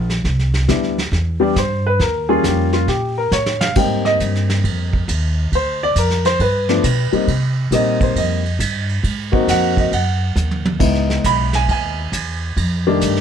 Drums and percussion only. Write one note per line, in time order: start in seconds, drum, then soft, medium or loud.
0.10 snare soft
0.25 brush sweep soft
0.25 kick soft
0.25 snare soft
0.39 snare soft
0.54 snare soft
0.68 kick soft
0.68 snare medium
0.68 hi-hat pedal medium
0.83 snare soft
0.98 snare soft
1.12 brush sweep soft
1.12 kick soft
1.12 snare soft
1.56 kick soft
1.56 snare medium
1.56 hi-hat pedal medium
2.00 brush sweep medium
2.00 kick soft
2.00 snare soft
2.44 kick soft
2.44 snare medium
2.44 hi-hat pedal medium
2.73 snare soft
2.88 brush sweep medium
2.88 kick soft
2.88 snare soft
3.32 snare medium
3.32 hi-hat pedal medium
3.46 snare medium
3.61 snare medium
3.75 kick medium
3.75 crash medium
4.05 snare soft
4.20 kick soft
4.20 hi-hat pedal medium
4.20 ride medium
4.35 snare soft
4.50 snare soft
4.50 ride soft
4.64 kick soft
4.64 ride medium
4.93 kick soft
5.08 kick soft
5.08 hi-hat pedal medium
5.08 ride medium
5.52 kick soft
5.52 ride medium
5.96 kick soft
5.96 hi-hat pedal medium
5.96 ride medium
6.10 snare soft
6.25 snare soft
6.25 ride soft
6.40 kick soft
6.40 ride medium
6.69 snare medium
6.84 kick soft
6.84 hi-hat pedal medium
6.84 ride medium
7.13 ride medium
7.28 kick soft
7.28 ride medium
7.72 kick soft
7.72 hi-hat pedal medium
7.72 ride medium
8.01 kick medium
8.01 ride soft
8.16 kick soft
8.16 ride medium
8.46 ride soft
8.60 kick soft
8.60 hi-hat pedal medium
8.60 ride medium
8.89 ride soft
9.04 kick soft
9.04 ride medium
9.33 kick medium
9.48 kick soft
9.48 snare soft
9.48 hi-hat pedal medium
9.48 ride medium
9.77 kick medium
9.77 ride soft
9.92 kick soft
9.92 ride medium
10.36 hi-hat pedal medium
10.36 high tom soft
10.51 high tom medium
10.65 high tom medium
10.80 kick medium
10.80 crash medium
10.95 snare soft
11.10 snare soft
11.24 kick soft
11.24 hi-hat pedal medium
11.24 ride medium
11.53 snare medium
11.53 ride medium
11.69 kick soft
11.69 ride medium
12.13 kick soft
12.13 hi-hat pedal medium
12.13 ride medium
12.57 kick soft
12.57 ride medium
13.01 kick soft
13.01 hi-hat pedal medium
13.01 ride medium
13.16 snare soft